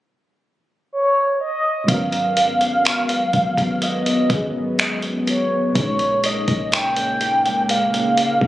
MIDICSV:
0, 0, Header, 1, 6, 480
1, 0, Start_track
1, 0, Tempo, 967742
1, 934, Time_signature, 4, 2, 24, 8
1, 4202, End_track
2, 0, Start_track
2, 0, Title_t, "Soft synth lead"
2, 0, Program_c, 0, 80
2, 459, Note_on_c, 0, 73, 84
2, 680, Note_off_c, 0, 73, 0
2, 698, Note_on_c, 0, 75, 91
2, 938, Note_on_c, 0, 77, 104
2, 946, Note_off_c, 0, 75, 0
2, 1900, Note_on_c, 0, 75, 96
2, 1907, Note_off_c, 0, 77, 0
2, 2377, Note_off_c, 0, 75, 0
2, 2382, Note_on_c, 0, 75, 90
2, 2451, Note_off_c, 0, 75, 0
2, 2620, Note_on_c, 0, 73, 85
2, 2841, Note_off_c, 0, 73, 0
2, 2862, Note_on_c, 0, 73, 89
2, 3102, Note_on_c, 0, 75, 89
2, 3110, Note_off_c, 0, 73, 0
2, 3338, Note_off_c, 0, 75, 0
2, 3342, Note_on_c, 0, 79, 101
2, 3821, Note_on_c, 0, 77, 98
2, 3828, Note_off_c, 0, 79, 0
2, 4202, Note_off_c, 0, 77, 0
2, 4202, End_track
3, 0, Start_track
3, 0, Title_t, "FM electric piano"
3, 0, Program_c, 1, 5
3, 914, Note_on_c, 1, 44, 61
3, 926, Note_on_c, 1, 54, 57
3, 938, Note_on_c, 1, 59, 61
3, 951, Note_on_c, 1, 61, 59
3, 963, Note_on_c, 1, 70, 73
3, 1023, Control_c, 1, 64, 127
3, 2104, Note_off_c, 1, 44, 0
3, 2110, Note_off_c, 1, 54, 0
3, 2117, Note_off_c, 1, 59, 0
3, 2123, Note_off_c, 1, 61, 0
3, 2126, Note_on_c, 1, 44, 46
3, 2129, Note_off_c, 1, 70, 0
3, 2133, Note_on_c, 1, 54, 42
3, 2139, Note_on_c, 1, 59, 43
3, 2145, Note_on_c, 1, 61, 45
3, 2151, Note_on_c, 1, 68, 51
3, 2835, Note_on_c, 1, 46, 63
3, 2848, Note_on_c, 1, 56, 58
3, 2850, Note_off_c, 1, 44, 0
3, 2853, Note_off_c, 1, 54, 0
3, 2854, Note_off_c, 1, 61, 0
3, 2857, Note_off_c, 1, 59, 0
3, 2860, Note_on_c, 1, 61, 60
3, 2861, Control_c, 1, 64, 0
3, 2863, Note_off_c, 1, 68, 0
3, 2872, Note_on_c, 1, 63, 58
3, 2885, Note_on_c, 1, 73, 75
3, 2959, Control_c, 1, 64, 127
3, 4202, Note_off_c, 1, 46, 0
3, 4202, Note_off_c, 1, 56, 0
3, 4202, Note_off_c, 1, 61, 0
3, 4202, Note_off_c, 1, 63, 0
3, 4202, Note_off_c, 1, 73, 0
3, 4202, End_track
4, 0, Start_track
4, 0, Title_t, "Analog synth pad"
4, 0, Program_c, 2, 89
4, 936, Note_on_c, 2, 56, 72
4, 937, Note_on_c, 2, 59, 83
4, 938, Note_on_c, 2, 54, 79
4, 2837, Note_off_c, 2, 54, 0
4, 2837, Note_off_c, 2, 59, 0
4, 2855, Note_on_c, 2, 49, 79
4, 2855, Note_on_c, 2, 58, 89
4, 4202, Note_off_c, 2, 49, 0
4, 4202, Note_off_c, 2, 56, 0
4, 4202, Note_off_c, 2, 58, 0
4, 4202, End_track
5, 0, Start_track
5, 0, Title_t, "808-style bass"
5, 0, Program_c, 3, 38
5, 934, Note_on_c, 3, 32, 102
5, 1634, Note_off_c, 3, 32, 0
5, 1655, Note_on_c, 3, 32, 99
5, 1770, Note_off_c, 3, 32, 0
5, 1774, Note_on_c, 3, 32, 88
5, 2120, Note_off_c, 3, 32, 0
5, 2132, Note_on_c, 3, 32, 99
5, 2833, Note_off_c, 3, 32, 0
5, 2854, Note_on_c, 3, 34, 105
5, 3200, Note_off_c, 3, 34, 0
5, 3214, Note_on_c, 3, 34, 102
5, 3695, Note_on_c, 3, 37, 93
5, 3702, Note_off_c, 3, 34, 0
5, 3809, Note_off_c, 3, 37, 0
5, 4173, Note_on_c, 3, 41, 100
5, 4202, Note_off_c, 3, 41, 0
5, 4202, End_track
6, 0, Start_track
6, 0, Title_t, "Drums"
6, 934, Note_on_c, 9, 36, 109
6, 935, Note_on_c, 9, 42, 74
6, 984, Note_off_c, 9, 36, 0
6, 985, Note_off_c, 9, 42, 0
6, 1054, Note_on_c, 9, 42, 38
6, 1103, Note_off_c, 9, 42, 0
6, 1174, Note_on_c, 9, 42, 71
6, 1224, Note_off_c, 9, 42, 0
6, 1294, Note_on_c, 9, 42, 51
6, 1344, Note_off_c, 9, 42, 0
6, 1415, Note_on_c, 9, 42, 52
6, 1421, Note_on_c, 9, 26, 101
6, 1464, Note_off_c, 9, 42, 0
6, 1471, Note_off_c, 9, 26, 0
6, 1533, Note_on_c, 9, 42, 64
6, 1583, Note_off_c, 9, 42, 0
6, 1653, Note_on_c, 9, 42, 54
6, 1655, Note_on_c, 9, 36, 83
6, 1703, Note_off_c, 9, 42, 0
6, 1705, Note_off_c, 9, 36, 0
6, 1773, Note_on_c, 9, 36, 78
6, 1776, Note_on_c, 9, 42, 44
6, 1823, Note_off_c, 9, 36, 0
6, 1826, Note_off_c, 9, 42, 0
6, 1894, Note_on_c, 9, 42, 71
6, 1943, Note_off_c, 9, 42, 0
6, 2015, Note_on_c, 9, 42, 53
6, 2065, Note_off_c, 9, 42, 0
6, 2132, Note_on_c, 9, 36, 94
6, 2133, Note_on_c, 9, 42, 58
6, 2182, Note_off_c, 9, 36, 0
6, 2182, Note_off_c, 9, 42, 0
6, 2375, Note_on_c, 9, 42, 63
6, 2378, Note_on_c, 9, 26, 104
6, 2425, Note_off_c, 9, 42, 0
6, 2428, Note_off_c, 9, 26, 0
6, 2492, Note_on_c, 9, 42, 48
6, 2542, Note_off_c, 9, 42, 0
6, 2616, Note_on_c, 9, 42, 58
6, 2666, Note_off_c, 9, 42, 0
6, 2854, Note_on_c, 9, 36, 107
6, 2854, Note_on_c, 9, 42, 76
6, 2904, Note_off_c, 9, 36, 0
6, 2904, Note_off_c, 9, 42, 0
6, 2972, Note_on_c, 9, 42, 38
6, 3022, Note_off_c, 9, 42, 0
6, 3093, Note_on_c, 9, 42, 77
6, 3143, Note_off_c, 9, 42, 0
6, 3213, Note_on_c, 9, 42, 50
6, 3214, Note_on_c, 9, 36, 80
6, 3263, Note_off_c, 9, 36, 0
6, 3263, Note_off_c, 9, 42, 0
6, 3334, Note_on_c, 9, 42, 53
6, 3340, Note_on_c, 9, 26, 103
6, 3384, Note_off_c, 9, 42, 0
6, 3390, Note_off_c, 9, 26, 0
6, 3454, Note_on_c, 9, 42, 61
6, 3504, Note_off_c, 9, 42, 0
6, 3575, Note_on_c, 9, 42, 53
6, 3624, Note_off_c, 9, 42, 0
6, 3698, Note_on_c, 9, 42, 44
6, 3748, Note_off_c, 9, 42, 0
6, 3816, Note_on_c, 9, 42, 71
6, 3865, Note_off_c, 9, 42, 0
6, 3938, Note_on_c, 9, 42, 52
6, 3987, Note_off_c, 9, 42, 0
6, 4055, Note_on_c, 9, 42, 59
6, 4104, Note_off_c, 9, 42, 0
6, 4173, Note_on_c, 9, 36, 80
6, 4202, Note_off_c, 9, 36, 0
6, 4202, End_track
0, 0, End_of_file